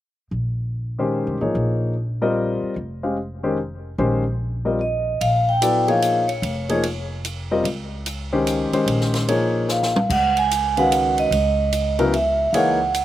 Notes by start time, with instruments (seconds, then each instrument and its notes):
0.31 upright bass A#1
0.98 grand piano D#3 G#3 C#4 G4 C5
1.27 upright bass C2
1.41 upright bass A1, grand piano F3 A#3 D#4 G#4 C#5
1.55 upright bass A#1
2.22 grand piano G3 C4 F4 A#4 D#5
2.62 muted upright bass stroke
2.76 upright bass F1
3.03 grand piano G#3 C#4 G4 C5 F5
3.43 grand piano D#3 G#3 C#4 G4 C5
3.98 upright bass A#1, grand piano D#3 G#3 C#4 G4 C5
4.65 grand piano G3 C4 F4 A#4 D#5
4.81 vibraphone D#5
5.21 upright bass A#1, vibraphone F5, ride
5.49 vibraphone G5
5.62 grand piano F#3 B3 E4 A4 D5, hi-hat pedal, ride
5.88 grand piano F3 A#3 D#4 G#4 C#5, vibraphone F5, ride
6.02 hi-hat pedal, ride
6.28 vibraphone C#5, ride
6.42 upright bass F1, ride
6.69 grand piano F3 A#3 D#4 G#4 C#5, ride
6.83 ride
7.25 hi-hat pedal, ride
7.51 grand piano G3 C4 F4 A#4 D#5
7.64 upright bass C#2, ride
8.06 hi-hat pedal, ride
8.32 grand piano D#3 G#3 C#4 G4 C5
8.47 hi-hat pedal, ride
8.71 grand piano D#3 G#3 C#4 G4 C5, muted upright bass stroke, ride
8.86 upright bass A#1, ride
9.01 snare
9.14 snare, ride
9.28 grand piano F3 A#3 D#4 G#4 C#5, ride
9.69 vibraphone F5, snare, hi-hat pedal
9.83 snare
9.96 mid tom
10.09 upright bass C#2, vibraphone F#5, kick, crash
10.37 vibraphone G#5, ride
10.51 hi-hat pedal, ride
10.77 grand piano D#3 G#3 C#4 F#4 B4, vibraphone F5 F#5, ride
10.92 hi-hat pedal, ride
11.18 vibraphone D#5, ride
11.31 upright bass C#2, ride
11.73 hi-hat pedal, ride
11.99 grand piano C#3 F#3 B3 E4 A#4, ride
12.14 vibraphone E5, ride
12.51 upright bass C#2, grand piano E3 A#3 D#4 G#4 C#5, vibraphone F5, ride
12.55 vibraphone F#5
12.94 hi-hat pedal, ride